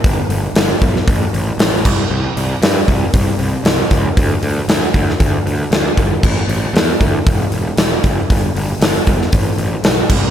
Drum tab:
CC |--------------x-|----------------|----------------|x---------------|
HH |o-o-o-o-o-o-o---|--o-o-o-o-o-o-o-|o-o-o-o-o-o-o-o-|--o-o-o-o-o-o-o-|
SD |----o--o----o---|----o-------o---|----o--o----o---|----o-------o---|
BD |o-----o-o-----o-|------o-o-----o-|o-----o-o-----o-|o-----o-o-----o-|

CC |--------------x-|
HH |o-o-o-o-o-o-o---|
SD |----o--o----o---|
BD |o-----o-o-----o-|